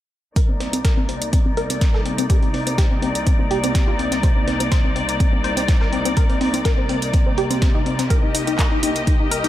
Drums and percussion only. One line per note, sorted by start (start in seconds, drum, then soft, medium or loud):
0.36 kick loud
0.36 closed hi-hat medium
0.36 closed hi-hat soft
0.60 snare soft
0.60 closed hi-hat medium
0.73 closed hi-hat medium
0.85 kick loud
0.85 snare loud
0.85 closed hi-hat medium
0.85 closed hi-hat soft
1.09 closed hi-hat medium
1.22 closed hi-hat medium
1.33 kick loud
1.33 closed hi-hat medium
1.57 closed hi-hat medium
1.70 closed hi-hat soft
1.70 closed hi-hat medium
1.81 kick loud
1.81 snare loud
1.81 closed hi-hat medium
1.94 snare soft
2.06 closed hi-hat medium
2.18 closed hi-hat medium
2.30 kick loud
2.30 closed hi-hat medium
2.30 closed hi-hat soft
2.43 closed hi-hat soft
2.54 open hi-hat medium
2.67 closed hi-hat medium
2.78 kick loud
2.78 snare loud
2.78 closed hi-hat medium
2.78 closed hi-hat soft
3.02 closed hi-hat medium
3.15 closed hi-hat medium
3.27 kick loud
3.27 closed hi-hat soft
3.27 closed hi-hat medium
3.51 closed hi-hat medium
3.64 closed hi-hat medium
3.75 kick loud
3.75 snare loud
3.75 closed hi-hat medium
3.75 closed hi-hat soft
3.99 closed hi-hat medium
4.12 snare medium
4.12 closed hi-hat medium
4.23 kick loud
4.23 closed hi-hat soft
4.23 closed hi-hat medium
4.48 snare soft
4.48 closed hi-hat medium
4.60 closed hi-hat medium
4.72 kick loud
4.72 snare loud
4.72 closed hi-hat soft
4.72 closed hi-hat medium
4.96 closed hi-hat medium
5.09 closed hi-hat medium
5.20 kick loud
5.20 closed hi-hat medium
5.20 closed hi-hat soft
5.44 closed hi-hat medium
5.57 closed hi-hat soft
5.57 closed hi-hat medium
5.68 kick loud
5.68 snare loud
5.68 closed hi-hat medium
5.68 closed hi-hat soft
5.81 snare soft
5.93 closed hi-hat medium
6.05 closed hi-hat medium
6.17 kick loud
6.17 closed hi-hat medium
6.17 closed hi-hat soft
6.30 closed hi-hat soft
6.41 open hi-hat medium
6.54 closed hi-hat medium
6.65 kick loud
6.65 snare loud
6.65 closed hi-hat medium
6.65 closed hi-hat soft
6.89 closed hi-hat medium
7.02 closed hi-hat medium
7.13 kick loud
7.13 closed hi-hat medium
7.13 closed hi-hat soft
7.38 closed hi-hat medium
7.51 closed hi-hat medium
7.62 kick loud
7.62 snare loud
7.62 closed hi-hat medium
7.62 closed hi-hat soft
7.86 closed hi-hat medium
7.99 snare medium
7.99 closed hi-hat medium
8.10 kick loud
8.10 closed hi-hat medium
8.10 closed hi-hat soft
8.35 snare soft
8.35 closed hi-hat medium
8.35 open hi-hat loud
8.47 closed hi-hat medium
8.59 kick loud
8.59 snare loud
8.59 clap loud
8.59 closed hi-hat medium
8.59 closed hi-hat soft
8.83 closed hi-hat medium
8.83 open hi-hat medium
8.96 closed hi-hat medium
9.07 kick loud
9.07 closed hi-hat medium
9.07 closed hi-hat soft
9.31 closed hi-hat medium
9.31 open hi-hat loud
9.44 closed hi-hat soft
9.44 closed hi-hat medium